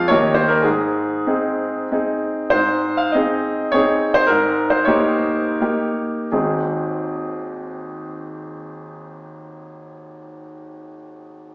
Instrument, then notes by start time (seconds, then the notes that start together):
grand piano
Already playing: F2 G#3 C4 F4 F5
0.08 D#2 A#3 D#4 C#5
0.12 G4
0.34 C5
0.48 A#4
0.62 G#2 G#4
1.27 C4 D#4 G#4
1.92 C4 D#4 G#4
2.50 G#2 C5
2.97 F5
3.12 C4 D#4 G#4 D#5
3.72 C4 D#4 G#4 C#5
4.14 C5
4.27 G#2 A#4
4.70 C5
4.85 A#3 D#4 G4 C#5
5.61 A#3 D#4 G4
6.32 G#1 D#2 G#3 C4 D#4 G#4